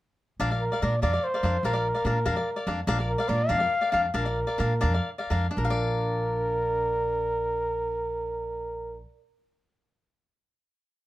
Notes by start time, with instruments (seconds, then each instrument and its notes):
0.40 upright bass A#1, cavaquinho D4 A#4 D5 F5
0.51 cavaquinho A#4 D5 F5
0.60 trumpet A#4
0.72 cavaquinho A#4 D5 F5
0.82 upright bass A#2, cavaquinho D4 A#4 D5 F5, trumpet D5
1.02 upright bass F2, cavaquinho D4 A#4 D5 F5, trumpet D5
1.13 cavaquinho A#4 D5 F5
1.24 trumpet C5
1.34 cavaquinho A#4 D5 F5
1.43 upright bass F2, cavaquinho D4 A#4 D5 F5
1.63 upright bass A#1, cavaquinho D4 A#4 D5 F5, trumpet A#4
1.73 cavaquinho A#4 D5 F5
1.94 cavaquinho A#4 D5 F5
2.05 upright bass A#2, cavaquinho D4 A#4 D5 F5
2.25 upright bass F2, cavaquinho D4 A#4 D5 F5
2.36 cavaquinho A#4 D5 F5
2.56 cavaquinho A#4 D5 F5
2.67 upright bass F2, cavaquinho D4 A#4 D5 F5
2.87 upright bass A#1, cavaquinho D4 A#4 D5 F5
2.98 cavaquinho A#4 D5 F5
3.08 trumpet A#4
3.18 cavaquinho A#4 D5 F5
3.28 upright bass A#2, cavaquinho D4 A#4 D5 F5, trumpet D5
3.49 upright bass F2, cavaquinho D4 A#4 D5 F5, trumpet F5
3.59 cavaquinho A#4 D5 F5
3.81 cavaquinho A#4 D5 F5
3.92 upright bass F2, cavaquinho D4 A#4 D5 F5, trumpet F5
4.14 upright bass A#1, cavaquinho D4 A#4 D5 F5, trumpet A#4
4.25 cavaquinho A#4 D5 F5
4.47 cavaquinho A#4 D5 F5
4.58 upright bass A#2, cavaquinho D4 A#4 D5 F5
4.81 upright bass F2, cavaquinho D4 A#4 D5 F5
4.94 cavaquinho A#4 D5 F5
5.18 cavaquinho A#4 D5 F5
5.30 upright bass F2, cavaquinho D4 A#4 D5 F5
5.51 cavaquinho D4
5.55 upright bass A#1, trumpet A#4, cavaquinho A#4
5.65 cavaquinho F5
5.70 cavaquinho D5